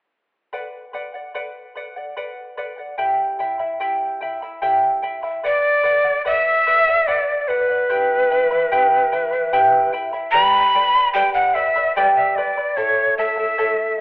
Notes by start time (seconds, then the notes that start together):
0.53 B4 D5 F#5
0.93 B4 D5 F#5
1.14 D5 F#5
1.35 B4 D5 F#5
1.76 B4 D5 F#5
1.96 D5 F#5
2.17 B4 D5 F#5
2.57 B4 D5 F#5
2.78 D5 F#5
2.98 E4 G4 E5 G5 B5
3.39 E4 E5 G5 B5
3.59 E4 E5 B5
3.80 E4 G4 E5 G5 B5
4.21 E4 E5 G5 B5
4.42 E4 E5 B5
4.62 E4 G4 E5 G5 B5
5.02 E4 E5 G5 B5
5.23 E4 E5 B5
5.44 B4 D5 F#5
5.83 B4 D5 F#5
6.04 D5 F#5
6.25 B4 D5 E5 F#5
6.67 B4 D5 F#5
6.87 D5 F#5
7.07 B4 D5 F#5
7.41 D5
7.49 B4 D5 F#5
7.69 D5 F#5
7.89 E4 G4 E5 G5 B5
8.31 E4 E5 G5 B5
8.50 E4 E5 B5
8.72 E4 G4 E5 G5 B5
9.12 E4 E5 G5 B5
9.32 E4 E5 B5
9.53 E4 G4 E5 G5 B5
9.92 E4 E5 G5 B5
10.13 E4 E5 B5
10.31 G4 B4 D5 G5 B5
10.74 B4 D5 G5 B5
10.95 B4 D5 B5
11.14 G4 B4 D5 G5 B5
11.34 F#5
11.54 B4 D5 E5 G5 B5
11.76 B4 D5 B5
11.96 G4 B4 D5 G5 B5
12.16 E5
12.36 B4 D5 G5 B5
12.57 B4 D5 B5
12.76 E4 A4 C#5 E5 A5
13.18 E4 A4 E5 A5
13.37 E4 A4 A5
13.58 E4 A4 C#5 E5 A5